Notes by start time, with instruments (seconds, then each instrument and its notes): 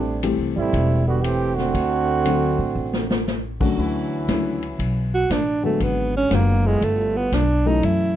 Already playing: upright bass A1, trombone section G3 A3 C4 D4
0.23 grand piano E3 G3 A3 C4 G4, hi-hat pedal, ride
0.38 upright bass C2
0.56 upright bass G#1, trombone section G3 A3 C4 E4
0.73 upright bass E1, kick, ride
1.06 trombone section D3 G3 B3 F#4
1.22 trombone section E3 A3 C4 G4, hi-hat pedal, ride
1.55 trombone section D3 A3 C4 F#4, snare
1.74 upright bass D2, kick, ride
2.25 grand piano D3 F#3 A3 C4 F#4, hi-hat pedal, ride
2.59 upright bass A2
2.75 upright bass A1
2.93 snare
3.10 snare
3.28 snare, hi-hat pedal
3.60 grand piano D3 F#3 A3 C#4 F#4, kick, crash
3.77 upright bass D2, trombone section E3 F#3 C#4 E4, kick
4.28 upright bass C#2, grand piano D3 F#3 A3 C#4 E4, kick, snare, hi-hat pedal, ride
4.62 ride
4.79 upright bass B1, kick, ride
5.14 alto saxophone F#4
5.30 upright bass A1, alto saxophone D4, kick, snare, hi-hat pedal, ride
5.63 grand piano D3 F#3 G#3 B3 F#4, alto saxophone A3
5.80 upright bass G#1, alto saxophone B3, kick, ride
6.17 alto saxophone C#4
6.29 upright bass F#1, grand piano D3 F#3 G#3 B3 F#4, kick, snare, hi-hat pedal, ride
6.35 alto saxophone A#3
6.65 alto saxophone G#3, trombone section A3 B3 E4 F4
6.81 upright bass G1, alto saxophone A3, kick, ride
7.17 alto saxophone B3
7.32 upright bass B1, alto saxophone D4, kick, snare, hi-hat pedal, ride
7.65 grand piano E3 F#3 A3 C#4 A4, alto saxophone D#4
7.83 upright bass F#2, alto saxophone E4, kick, ride